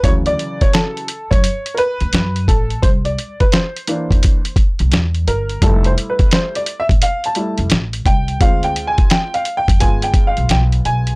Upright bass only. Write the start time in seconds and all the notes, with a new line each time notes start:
0.03 D2
1.31 F#2
2.01 D2
2.13 F#2
2.48 A1
2.83 C2
4.11 E2
4.80 C2
4.92 E2
5.27 G1
5.62 F1
6.89 A1
7.59 F1
7.71 A1
8.05 C2
8.41 D2
9.68 F2
9.82 G1
10.38 B1
10.50 B1
10.85 B1